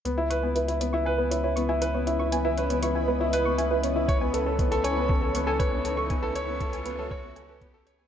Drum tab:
HH |x-x-xxx---x-x-x-|x-x-xxx---x-x-x-|x-x-xxx---x-x-x-|x-x-xxx---x-x-x-|
BD |----------------|----------------|o---o---o---o---|o---o---o---o---|